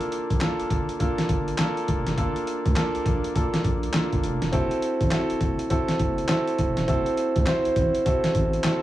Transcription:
0.00 0.19 A#3 medium
0.00 0.19 D4 medium
0.00 0.20 F4 medium
0.00 0.20 A4 medium
0.00 closed hi-hat soft
0.12 closed hi-hat medium
0.30 0.40 A#1 medium
0.30 kick medium
0.30 closed hi-hat medium
0.40 0.78 A#3 medium
0.40 0.78 D4 medium
0.40 0.78 F4 medium
0.40 0.79 A4 medium
0.40 snare medium
0.40 clap medium
0.40 closed hi-hat medium
0.60 0.64 G1 soft
0.60 closed hi-hat soft
0.70 0.86 G1 medium
0.70 kick medium
0.70 closed hi-hat medium
0.89 closed hi-hat medium
0.99 1.37 A#3 medium
0.99 1.37 D4 medium
0.99 1.37 F4 medium
0.99 1.38 A4 medium
0.99 kick medium
0.99 closed hi-hat medium
1.18 snare medium
1.18 closed hi-hat medium
1.29 1.54 G1 medium
1.29 kick medium
1.29 closed hi-hat medium
1.48 closed hi-hat soft
1.58 1.96 A#3 medium
1.58 1.96 D4 medium
1.58 1.96 F4 medium
1.58 1.97 A4 loud
1.58 snare loud
1.58 clap medium
1.58 closed hi-hat medium
1.77 closed hi-hat soft
1.88 2.04 F1 medium
1.88 kick medium
1.88 closed hi-hat medium
2.07 2.16 F1 loud
2.07 snare medium
2.07 closed hi-hat medium
2.17 2.33 G1 loud
2.17 2.55 A#3 medium
2.17 2.55 D4 medium
2.17 2.55 F4 medium
2.17 2.55 A4 medium
2.17 kick loud
2.17 closed hi-hat medium
2.36 closed hi-hat medium
2.47 closed hi-hat medium
2.66 2.75 D2 medium
2.66 kick medium
2.66 closed hi-hat medium
2.76 3.13 A#3 medium
2.76 3.14 D4 medium
2.76 3.14 F4 medium
2.76 3.14 A4 loud
2.76 snare medium
2.76 clap medium
2.76 closed hi-hat medium
2.95 3.00 A#1 soft
2.95 closed hi-hat soft
3.06 3.21 A#1 medium
3.06 kick loud
3.06 closed hi-hat medium
3.24 closed hi-hat medium
3.35 3.72 A#3 medium
3.35 3.72 D4 medium
3.35 3.73 F4 medium
3.35 3.73 A4 medium
3.35 kick medium
3.35 closed hi-hat medium
3.54 snare medium
3.54 closed hi-hat medium
3.64 3.89 A#1 loud
3.64 kick medium
3.64 closed hi-hat medium
3.83 closed hi-hat soft
3.93 4.31 A#3 medium
3.93 4.31 D4 medium
3.93 4.31 F4 medium
3.93 4.32 A4 medium
3.93 snare loud
3.93 clap medium
3.93 closed hi-hat medium
4.12 4.22 G1 medium
4.12 kick medium
4.12 closed hi-hat soft
4.24 4.39 F1 loud
4.24 closed hi-hat medium
4.42 4.51 E1 medium
4.42 snare medium
4.42 closed hi-hat medium
4.52 4.68 F#1 medium
4.52 4.90 C4 medium
4.52 4.90 E4 medium
4.52 4.90 F#4 medium
4.52 4.91 A4 loud
4.52 kick loud
4.52 closed hi-hat medium
4.71 closed hi-hat soft
4.82 closed hi-hat medium
5.01 5.10 A1 loud
5.01 kick medium
5.01 closed hi-hat medium
5.11 5.49 C4 medium
5.11 5.49 E4 medium
5.11 5.49 F#4 medium
5.11 5.49 A4 loud
5.11 snare medium
5.11 clap medium
5.11 closed hi-hat medium
5.30 5.35 F#1 soft
5.30 closed hi-hat medium
5.41 5.56 F#1 medium
5.41 kick loud
5.41 closed hi-hat medium
5.59 closed hi-hat medium
5.70 6.08 C4 medium
5.70 6.08 E4 medium
5.70 6.08 F#4 medium
5.70 6.08 A4 medium
5.70 kick medium
5.70 closed hi-hat medium
5.88 snare medium
5.88 closed hi-hat medium
5.99 6.24 F#1 medium
5.99 kick medium
5.99 closed hi-hat medium
6.18 closed hi-hat soft
6.28 6.66 C4 medium
6.28 6.67 E4 medium
6.28 6.67 F#4 medium
6.28 6.67 A4 medium
6.28 snare loud
6.28 clap medium
6.28 closed hi-hat medium
6.48 closed hi-hat soft
6.58 6.74 F1 medium
6.58 kick medium
6.58 closed hi-hat medium
6.77 6.86 E1 medium
6.77 snare medium
6.77 closed hi-hat medium
6.88 7.04 F#1 loud
6.88 7.25 C4 medium
6.88 7.26 E4 medium
6.88 7.26 F#4 medium
6.88 7.26 A4 loud
6.88 kick loud
6.88 closed hi-hat medium
7.06 closed hi-hat medium
7.17 closed hi-hat medium
7.36 7.45 D2 medium
7.36 kick medium
7.36 closed hi-hat medium
7.46 7.84 C4 medium
7.46 7.84 E4 medium
7.46 7.84 F#4 medium
7.46 7.85 C5 loud
7.46 snare medium
7.46 clap medium
7.46 closed hi-hat medium
7.65 7.70 A1 soft
7.65 closed hi-hat medium
7.76 7.92 A1 medium
7.76 kick loud
7.76 closed hi-hat medium
7.95 closed hi-hat medium
8.05 8.43 C4 medium
8.05 8.43 E4 medium
8.05 8.43 F#4 medium
8.05 8.43 A4 medium
8.05 kick loud
8.05 closed hi-hat medium
8.24 snare medium
8.24 closed hi-hat medium
8.35 8.59 A1 loud
8.35 kick medium
8.35 closed hi-hat medium
8.53 closed hi-hat soft
8.64 8.82 C4 medium
8.64 8.82 E4 medium
8.64 8.82 F#4 medium
8.64 8.82 A4 medium
8.64 snare loud
8.64 clap medium
8.64 closed hi-hat medium

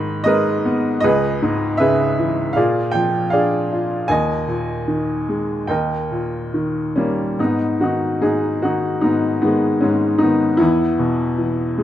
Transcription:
0.00 1.00 G#2 medium
0.00 1.00 D#3 medium
0.00 0.22 D#5 medium
0.00 0.28 B5 medium
0.24 1.01 G#3 medium
0.24 1.00 A#4 medium
0.24 1.00 B4 medium
0.24 0.99 D#5 medium
0.65 1.03 B3 medium
1.00 2.53 C#2 medium
1.00 1.79 G#4 medium
1.00 1.78 B4 medium
1.00 1.82 D#5 medium
1.42 2.54 G#2 medium
1.77 2.54 C#3 soft
1.77 2.53 G#4 medium
1.77 2.52 B4 medium
1.77 2.58 E5 medium
2.19 2.56 E3 medium
2.53 4.06 A#2 medium
2.53 3.32 G#4 medium
2.53 3.32 D5 medium
2.53 2.94 F5 medium
2.91 4.07 F3 soft
2.91 3.29 G5 medium
3.30 4.08 D4 soft
3.30 4.06 G#4 medium
3.30 4.06 D5 soft
3.30 4.11 F5 medium
3.72 4.09 F4 medium
4.08 5.65 D#2 medium
4.08 5.66 D#5 medium
4.08 5.65 G#5 medium
4.48 5.65 A#2 soft
4.88 5.67 D#3 soft
5.29 5.68 G#3 soft
5.67 7.35 D#2 medium
5.67 7.35 A#4 soft
5.67 7.35 D#5 soft
5.67 6.92 G5 medium
6.11 7.35 A#2 soft
6.54 7.36 D#3 soft
6.96 7.38 G3 soft
6.96 7.37 A#3 soft
6.96 7.40 C#4 medium
7.39 8.20 G#2 soft
7.39 7.79 B3 soft
7.39 7.78 D#4 medium
7.80 8.61 D#3 soft
7.80 8.20 D#4 soft
7.80 8.23 F#4 medium
8.22 9.01 G#2 soft
8.22 8.60 D#4 medium
8.22 8.63 G#4 medium
8.62 9.41 D#3 soft
8.62 9.00 D#4 medium
8.62 9.00 F#4 medium
9.01 9.81 G#2 soft
9.01 9.40 B3 soft
9.01 9.39 D#4 medium
9.42 10.20 D#3 soft
9.42 9.80 G#3 soft
9.42 9.83 B3 medium
9.81 10.58 G#2 soft
9.81 10.22 C#4 medium
9.85 10.20 G#3 soft
10.18 10.59 D#3 soft
10.18 10.58 B3 soft
10.18 10.60 D#4 medium
10.57 11.83 E2 medium
10.57 11.83 E4 medium
10.62 11.83 B3 medium
10.99 11.83 B2 soft
11.38 11.83 E3 soft
11.78 11.83 G#3 medium

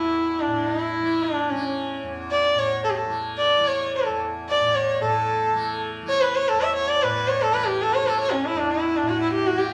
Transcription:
0.00 2.03 E2 medium
0.00 0.46 A2 medium
0.00 1.00 E3 medium
0.00 0.42 E4 medium
0.00 0.79 E4 medium
0.41 0.69 D4 medium
0.46 2.54 A2 medium
0.67 1.25 E4 medium
0.80 1.37 E4 medium
1.00 1.52 E3 medium
1.23 1.51 D4 medium
1.36 1.64 D4 medium
1.50 3.07 E3 medium
1.50 2.04 C#4 medium
1.61 2.13 C#4 medium
2.03 4.08 E2 medium
2.31 2.60 D5 loud
2.44 2.72 D5 medium
2.54 4.60 A2 medium
2.59 2.83 C#5 medium
2.71 2.99 C#5 medium
2.84 2.91 A4 medium
2.90 2.97 G4 medium
2.95 3.12 A4 medium
2.95 3.08 A4 medium
3.07 3.57 E3 medium
3.07 3.25 A4 soft
3.38 3.69 D5 loud
3.51 3.71 D5 medium
3.57 5.52 E3 medium
3.68 3.94 C#5 medium
3.73 3.79 D5 soft
3.78 4.07 C#5 medium
3.95 4.20 A4 medium
4.06 6.52 E2 medium
4.06 4.31 A4 soft
4.49 4.76 D5 loud
4.60 5.01 A2 medium
4.60 5.10 D5 medium
4.75 5.00 C#5 medium
5.01 7.03 A2 medium
5.01 5.77 A4 medium
5.12 5.89 A4 medium
5.52 6.02 E3 medium
6.02 7.53 E3 medium
6.09 6.23 C#5 loud
6.20 6.37 B4 loud
6.20 6.34 C#5 medium
6.33 6.45 B4 medium
6.33 6.50 C#5 loud
6.45 6.63 A4 loud
6.45 6.73 C#5 medium
6.53 8.53 E2 medium
6.62 6.74 E5 loud
6.73 6.90 C#5 loud
6.73 6.87 E5 medium
6.86 7.00 C#5 medium
6.86 7.04 D5 loud
6.99 9.01 A2 medium
6.99 7.29 B4 loud
6.99 7.67 D5 medium
7.27 7.43 C#5 loud
7.42 7.55 A4 loud
7.53 8.03 E3 medium
7.53 7.68 B4 loud
7.66 7.83 G4 loud
7.66 7.79 B4 medium
7.79 7.92 G4 medium
7.79 7.95 A4 loud
7.91 8.32 A4 medium
7.91 8.09 C#5 loud
8.03 9.52 E3 medium
8.07 8.19 A4 medium
8.20 8.34 C#5 loud
8.32 8.47 C#4 medium
8.32 8.45 C#5 medium
8.43 8.57 C#4 medium
8.43 8.59 E4 loud
8.53 9.73 E2 medium
8.53 8.81 E4 medium
8.57 8.72 D4 medium
8.71 8.98 E4 medium
8.82 9.33 E4 medium
8.96 9.10 D4 medium
9.02 9.73 A2 medium
9.08 9.20 F#4 medium
9.21 9.33 E4 medium
9.33 9.62 E4 medium
9.33 9.48 G4 medium
9.46 9.60 F#4 medium
9.52 9.73 E3 medium
9.59 9.73 F#4 medium
9.59 9.73 G4 medium

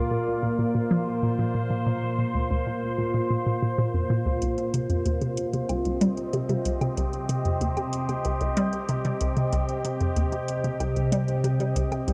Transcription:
0.00 4.42 A#2 medium
0.00 6.15 A#3 medium
0.00 5.90 F4 medium
0.00 0.62 D5 medium
0.11 0.18 A#2 medium
0.43 0.50 A#2 medium
0.43 6.24 C5 medium
0.59 0.66 A#2 medium
0.75 0.82 A#2 medium
0.91 0.95 F3 loud
1.23 1.34 A#2 medium
1.39 1.46 A#2 medium
1.55 1.62 A#2 medium
1.71 1.78 A#2 medium
1.87 1.94 A#2 medium
2.19 2.26 A#2 medium
2.35 2.42 D2 medium
2.51 2.58 D2 medium
2.66 2.74 A#2 medium
2.98 3.06 A#2 medium
3.14 3.22 A#2 medium
3.30 3.38 A#2 medium
3.46 3.51 A#2 medium
3.62 3.67 A#2 medium
3.78 3.86 A#2 loud
3.94 4.01 F2 medium
4.10 4.14 A#2 loud
4.26 4.30 D2 medium
4.42 4.49 C2 medium
4.42 12.13 C3 medium
4.42 closed hi-hat medium
4.58 closed hi-hat soft
4.74 4.81 C3 medium
4.74 closed hi-hat medium
4.90 4.97 F2 medium
4.90 closed hi-hat soft
4.99 12.13 C4 medium
5.06 5.13 D#2 medium
5.06 closed hi-hat medium
5.21 5.29 C3 medium
5.21 closed hi-hat soft
5.37 12.13 D#5 medium
5.37 closed hi-hat medium
5.53 5.61 C3 medium
5.53 closed hi-hat soft
5.69 5.77 C2 medium
5.69 closed hi-hat medium
5.69 low woodblock medium
5.85 5.93 C2 medium
5.85 closed hi-hat soft
5.89 12.13 G4 medium
6.01 6.06 G3 loud
6.01 closed hi-hat medium
6.17 closed hi-hat soft
6.33 6.44 C3 medium
6.33 closed hi-hat medium
6.49 6.57 C3 medium
6.49 closed hi-hat soft
6.65 6.73 C2 medium
6.65 closed hi-hat medium
6.81 6.89 C3 medium
6.81 closed hi-hat soft
6.81 low woodblock medium
6.97 7.05 C2 medium
6.97 closed hi-hat medium
7.13 closed hi-hat soft
7.29 7.37 C3 medium
7.29 closed hi-hat medium
7.45 7.53 F2 medium
7.45 closed hi-hat soft
7.61 7.69 D#2 medium
7.61 closed hi-hat medium
7.77 7.84 C3 medium
7.77 closed hi-hat soft
7.77 low woodblock medium
7.93 closed hi-hat medium
8.09 8.16 C3 medium
8.09 closed hi-hat soft
8.09 low woodblock medium
8.25 8.32 C2 medium
8.25 closed hi-hat medium
8.41 8.48 C2 medium
8.41 closed hi-hat soft
8.57 8.61 G3 loud
8.57 closed hi-hat medium
8.73 closed hi-hat soft
8.89 9.00 C3 medium
8.89 closed hi-hat medium
9.05 9.12 C3 medium
9.05 closed hi-hat soft
9.21 9.28 C2 medium
9.21 closed hi-hat medium
9.37 9.44 C3 medium
9.37 closed hi-hat soft
9.53 9.60 C2 medium
9.53 closed hi-hat medium
9.69 closed hi-hat soft
9.85 9.92 C3 medium
9.85 closed hi-hat loud
10.01 10.08 F2 medium
10.01 closed hi-hat soft
10.16 10.24 D#2 medium
10.16 closed hi-hat medium
10.32 10.40 C3 medium
10.32 closed hi-hat soft
10.48 closed hi-hat medium
10.64 10.72 C3 medium
10.64 closed hi-hat soft
10.80 10.88 C2 medium
10.80 closed hi-hat medium
10.80 low woodblock medium
10.96 11.04 C2 medium
10.96 closed hi-hat soft
11.12 11.17 G3 loud
11.12 closed hi-hat medium
11.28 closed hi-hat soft
11.44 11.55 C3 medium
11.44 closed hi-hat medium
11.60 11.67 C3 medium
11.60 closed hi-hat soft
11.76 11.83 C2 medium
11.76 closed hi-hat medium
11.92 11.99 C3 medium
11.92 closed hi-hat soft
11.92 low woodblock medium
12.08 12.13 C2 medium
12.08 closed hi-hat medium

